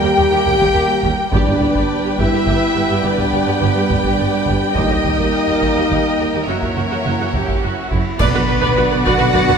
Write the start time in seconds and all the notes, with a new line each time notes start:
Already playing: G3 A#3 G4 A#4 G5
0.03 D#2 G4
0.17 D#2 G4
0.31 D#2 G4
0.46 D#2 G4, taiko low
0.59 D#2 G4, taiko
0.74 D#2 G4
0.88 D#2 G4
1.03 D#2 G4, taiko
1.32 G1 G2 G3 B3 D4 G4 B4 D5 G5, taiko
1.46 G2 G4, taiko low
1.60 G1 G2 G4, taiko low
1.75 G2 G4, taiko
2.03 G2 G4
2.17 G1 G2 E4 G4 E5, taiko
2.32 G2 G4
2.46 G1 G2 G4, taiko
2.74 G1 G2 G4
2.89 G2 G4
3.03 G1 G2 D4 G4 D5
3.17 G2 G4, taiko low
3.31 G1 G2 G4
3.46 G2 G4
3.61 G1 G2 G4
3.75 G2 G4
3.90 G1 G2 D4 G4 D5, taiko low
4.04 G2 G4, taiko
4.18 G1 G2 G4
4.32 G2 G4
4.46 G1 G2 G4, taiko
4.75 D#2 A#3 D#4 G4 A#4 D#5, taiko
4.90 D#2 G4, taiko low
5.03 D#2 G4, taiko low
5.18 D#2 G4, taiko
5.47 D#2 G4
5.61 D#2 G4, taiko
5.76 D#2 G4
5.90 D#2 G4, taiko
6.18 D#2 G4
6.33 D#2 G4
6.46 F#1 F#2 E3 A#3 C#4 E4 F#4 A#4 C#5 E5 F#5
6.62 F#2 F#4, taiko low
6.76 F#1 F#2 F#4
6.91 F#2 F#4
7.05 F#1 F#2 F#4
7.20 F#2 F#4
7.33 F#1 F#2 G4, taiko low
7.48 F#2, taiko
7.62 F#1 F#2 F#4
7.78 F#2
7.91 F#1 F#2 E4, taiko
8.20 B1 D3 B3 D4 F#4 B4 D5 F#5, concert bass drum, taiko, crash
8.34 B1 F#4 B4
8.48 B1 B4
8.62 B1 B4 D5, taiko
8.77 B1 F#4 B4
8.91 B1 B4
9.05 B1 F#4 B4 D5 F#5, taiko
9.19 B1 F#4 B4
9.33 B1 B4 D5, taiko
9.48 B1 F#4 B4, taiko low-mid